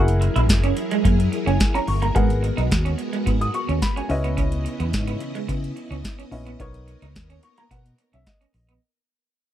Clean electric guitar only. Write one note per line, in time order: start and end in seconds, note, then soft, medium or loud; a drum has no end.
0.21 muted clean electric guitar stroke soft
0.36 0.45 E4 medium
0.64 0.73 C#4 medium
0.77 muted clean electric guitar stroke soft
0.92 1.01 G#3 medium
1.05 1.15 A#3 medium
1.32 muted clean electric guitar stroke soft
1.46 1.56 C#4 medium
1.74 1.84 C#4 medium
1.87 muted clean electric guitar stroke soft
2.02 2.11 A#3 medium
2.15 2.25 G#3 medium
2.43 muted clean electric guitar stroke soft
2.57 2.67 D#4 medium
2.85 2.94 C#4 medium
2.98 muted clean electric guitar stroke soft
3.13 3.22 G#3 medium
3.26 3.37 B3 medium
3.54 muted clean electric guitar stroke soft
3.69 3.78 C#4 medium
3.96 4.06 C#4 medium
4.10 muted clean electric guitar stroke soft
4.24 4.33 B3 medium
4.37 4.48 C#4 medium
4.65 muted clean electric guitar stroke soft
4.80 4.89 B3 medium
5.08 5.17 B3 medium
5.21 muted clean electric guitar stroke soft
5.35 5.44 G#3 medium
5.49 5.59 B3 medium
5.76 muted clean electric guitar stroke soft
5.91 6.00 C#4 medium
6.19 6.28 C#4 medium
6.32 muted clean electric guitar stroke soft
6.47 6.56 B3 medium
6.60 6.70 B3 medium
6.88 muted clean electric guitar stroke soft
7.02 7.11 D#4 medium
7.30 7.39 C#4 medium
7.43 muted clean electric guitar stroke soft
7.58 7.67 A#3 medium
7.71 7.81 B3 medium
7.99 muted clean electric guitar stroke soft
8.13 8.22 C#4 medium
8.41 8.50 C#4 medium
8.54 muted clean electric guitar stroke soft
8.69 8.78 B3 medium